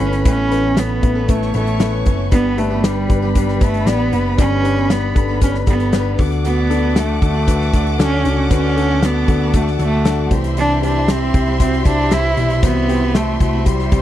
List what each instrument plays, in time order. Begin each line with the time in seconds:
Already playing: upright piano A2 G4, cello C#4, violin section B4 B5
0.00 picked electric bass G1, steel-string acoustic guitar E3 B3 C#4 A4, upright piano A3 B3 C#4 E4 B4, closed hi-hat
0.13 closed hi-hat
0.25 picked electric bass A1, upright piano A2 A3 B3 C#4 E4 B4, steel-string acoustic guitar A2 E3 B3 C#4 A4, cello C#4, kick, closed hi-hat
0.51 upright piano A3 B3 C#4 E4 B4, closed hi-hat
0.64 steel-string acoustic guitar B3 C#4 A4
0.77 upright piano A3 B3 C#4 E4 B4, cello B3, snare, closed hi-hat
1.02 picked electric bass A1, upright piano A3 B3 C#4 E4 B4, kick, closed hi-hat
1.15 steel-string acoustic guitar B3 C#4 A4
1.28 upright piano A3 B3 C#4 E4 B4, cello A3, violin section C#5 C#6, kick, closed hi-hat
1.42 snare
1.54 picked electric bass A1, steel-string acoustic guitar E3 B3 C#4 A4, upright piano A3 B3 C#4 E4 B4, cello A3, closed hi-hat
1.67 closed hi-hat
1.79 steel-string acoustic guitar E3 B3 C#4 A4, upright piano A3 B3 C#4 E4 B4, snare, closed hi-hat
2.05 picked electric bass F#1, steel-string acoustic guitar E3 B3 C#4 A4, upright piano A3 B3 C#4 E4 B4, kick, closed hi-hat
2.31 picked electric bass G1, steel-string acoustic guitar G2 D3 G3 B3 D4 G4, upright piano G2 D4 G4 B4, cello B3, violin section B4 B5, kick, closed hi-hat
2.57 cello A3, upright piano D4 G4 B4, closed hi-hat
2.70 steel-string acoustic guitar G3 B3 D4 G4
2.83 cello G3, upright piano D4 G4 B4, snare, closed hi-hat
3.09 picked electric bass G1, upright piano D4 G4 B4, kick, closed hi-hat
3.22 steel-string acoustic guitar G3 B3 D4 G4
3.35 cello G3, upright piano D4 G4 B4, kick, closed hi-hat
3.49 snare
3.60 picked electric bass G1, steel-string acoustic guitar G3 B3 D4 G4, cello A3, upright piano D4 G4 B4, kick, closed hi-hat
3.74 closed hi-hat
3.86 picked electric bass A1, steel-string acoustic guitar G3 B3 D4 G4, cello B3, upright piano D4 G4 D5, snare, closed hi-hat
4.12 picked electric bass F#1, steel-string acoustic guitar G3 B3 D4 G4, upright piano D4 G4 B4, closed hi-hat
4.38 picked electric bass G1, upright piano G2 D4 G4 D5, steel-string acoustic guitar G2 D3 G3 B3 D4 G4, cello C#4, kick, closed hi-hat
4.63 upright piano D4 G4 B4, closed hi-hat
4.77 steel-string acoustic guitar G3 B3 D4 G4
4.89 cello B3, upright piano D4 G4 B4, snare, closed hi-hat
5.15 picked electric bass G1, upright piano D4 G4 A4, kick, closed hi-hat
5.28 steel-string acoustic guitar G3 B3 D4 G4
5.41 cello C#4, upright piano D4 G4 B4, kick, closed hi-hat
5.55 snare
5.66 picked electric bass G1, steel-string acoustic guitar G3 B3 D4 G4, upright piano D4 G4 A4, kick, closed hi-hat
5.70 cello B3
5.80 closed hi-hat
5.92 steel-string acoustic guitar G3 B3 D4 G4, upright piano D4 G4 B4, snare, closed hi-hat
6.18 picked electric bass D2, steel-string acoustic guitar D3 A3 D4 F#4, upright piano D3 D4 F#4 A4, violin section F#5 D6, kick, open hi-hat
6.32 closed hi-hat
6.44 steel-string acoustic guitar D3 A3 D4 F#4, cello B3, string section A4 F#5 D6, closed hi-hat
6.70 upright piano D4 F#4 A4, closed hi-hat
6.83 steel-string acoustic guitar A3 D4 F#4
6.95 cello A3, upright piano D4 F#4 A4, snare, closed hi-hat
7.22 picked electric bass D2, cello A3, upright piano D4 F#4 A4, kick, closed hi-hat
7.34 steel-string acoustic guitar A3 D4 F#4
7.47 upright piano D4 F#4 B4, kick, closed hi-hat
7.61 snare
7.73 picked electric bass D2, steel-string acoustic guitar D3 A3 D4 F#4, upright piano D4 F#4 A4, kick, closed hi-hat
7.87 closed hi-hat
7.98 picked electric bass D2, steel-string acoustic guitar D3 A3 D4 F#4, cello C#4, upright piano D4 F#4 A4, snare, closed hi-hat
8.24 picked electric bass C#2, steel-string acoustic guitar D3 A3 D4 F#4, upright piano D3 D4 F#4 A4, closed hi-hat
8.50 picked electric bass D2, steel-string acoustic guitar D3 A3 D4 F#4, cello C#4, upright piano D4 F#4 B4, string section A5, kick, closed hi-hat
8.76 upright piano D4 F#4 A4, closed hi-hat
8.89 steel-string acoustic guitar A3 D4 F#4
9.02 cello B3, upright piano D4 F#4 A4, snare, closed hi-hat
9.28 picked electric bass D2, upright piano D4 F#4 A4, kick, closed hi-hat
9.40 steel-string acoustic guitar A3 D4 F#4
9.54 cello A3, upright piano D4 F#4 A4, kick, closed hi-hat
9.67 snare
9.79 picked electric bass D2, steel-string acoustic guitar D3 A3 D4 F#4, cello A3, upright piano D4 F#4 A4, closed hi-hat
10.05 steel-string acoustic guitar D3 A3 D4 F#4, upright piano D4 F#4 A4, snare, closed hi-hat
10.30 picked electric bass C2, upright piano C3 C4 E4 G4, steel-string acoustic guitar E3 G3 C4 E4, string section G4 E5 C6, violin section E5 C6, kick, closed hi-hat
10.44 closed hi-hat
10.57 steel-string acoustic guitar C3 E3 G3 C4 E4, cello D4, closed hi-hat
10.82 upright piano C4 E4 G4, cello D4, closed hi-hat
10.95 steel-string acoustic guitar G3 C4 E4
11.08 upright piano C4 E4 G4, cello C4, snare, closed hi-hat
11.33 picked electric bass C2, upright piano C4 E4 G4, kick, closed hi-hat
11.46 steel-string acoustic guitar G3 C4 E4
11.60 upright piano C4 E4 F#4, cello C4, kick, closed hi-hat
11.73 snare
11.85 picked electric bass C2, steel-string acoustic guitar E3 G3 C4 E4, upright piano C4 E4 G4, cello D4, kick, closed hi-hat
12.11 picked electric bass C2, steel-string acoustic guitar E3 G3 C4 E4, upright piano C4 E4 G4, cello E4, snare, closed hi-hat
12.36 picked electric bass B1, upright piano C3 C4 E4 G4, steel-string acoustic guitar E3 G3 C4 E4, closed hi-hat
12.50 closed hi-hat
12.62 picked electric bass C2, steel-string acoustic guitar C3 E3 G3 C4 E4, cello B3, upright piano C4 E4 F#4, kick, closed hi-hat
12.88 upright piano C4 E4 G4, closed hi-hat
13.01 steel-string acoustic guitar G3 C4 E4
13.14 cello A3, upright piano C4 E4 G4, snare, closed hi-hat
13.39 picked electric bass C2, cello A3, upright piano C4 E4 F#4, kick, closed hi-hat
13.53 steel-string acoustic guitar G3 C4 E4
13.66 cello G3, upright piano C4 E4 G4, violin section C5 C6, kick, closed hi-hat
13.79 snare
13.91 picked electric bass C2, steel-string acoustic guitar E3 G3 C4 E4, upright piano C4 E4 G4, kick, closed hi-hat